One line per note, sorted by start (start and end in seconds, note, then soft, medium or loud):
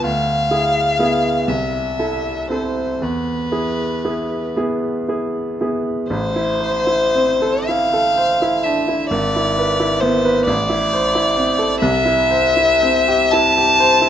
0.04 0.49 D2 soft
0.04 1.49 F5 medium
0.51 0.95 E4 soft
0.51 0.95 G#4 soft
0.99 1.44 B3 soft
0.99 1.45 E4 soft
0.99 1.45 G#4 soft
1.48 1.97 C2 soft
1.48 2.50 E5 medium
1.99 2.46 E4 soft
1.99 2.46 A4 soft
2.50 2.97 C4 soft
2.50 2.97 E4 soft
2.50 2.97 A4 soft
2.50 3.04 C5 soft
3.02 3.51 E2 soft
3.02 4.55 B4 soft
3.52 3.99 E4 soft
3.52 3.99 G#4 soft
4.05 4.51 B3 soft
4.05 4.51 E4 soft
4.05 4.51 G#4 soft
4.56 5.03 B3 soft
4.56 5.03 E4 soft
4.56 5.03 G#4 soft
5.08 5.55 E4 soft
5.08 5.56 G#4 soft
5.61 6.06 B3 soft
5.61 6.06 E4 soft
5.61 6.06 G#4 soft
6.10 9.06 A1 medium
6.10 7.69 C5 medium
6.36 6.77 E4 soft
6.61 7.03 C5 soft
6.87 7.30 E4 soft
7.15 7.57 C4 soft
7.42 7.83 A4 soft
7.67 8.08 E4 soft
7.67 8.65 F5 medium
7.93 8.31 A4 soft
8.18 8.54 C5 soft
8.42 8.78 E4 soft
8.63 8.87 D4 soft
8.63 9.08 E5 medium
8.88 9.10 E4 soft
9.09 10.43 G#1 medium
9.09 10.02 D5 medium
9.36 9.71 E4 soft
9.58 9.93 B4 soft
9.80 10.15 E4 soft
10.01 10.38 B3 soft
10.01 10.45 C5 medium
10.25 10.47 B4 medium
10.45 11.78 A1 medium
10.45 11.78 D5 medium
10.69 11.05 E4 soft
10.93 11.28 C5 medium
11.15 11.50 E4 soft
11.36 11.72 C4 soft
11.59 11.81 A4 soft
11.80 14.09 C2 medium
11.80 13.33 E5 medium
12.06 12.45 E4 medium
12.31 12.71 C5 soft
12.57 12.98 E4 soft
12.82 13.23 C4 soft
13.08 13.48 G4 medium
13.31 13.71 E4 medium
13.31 14.09 A5 loud
13.58 13.93 G4 soft
13.80 14.09 C5 medium
14.02 14.09 E4 medium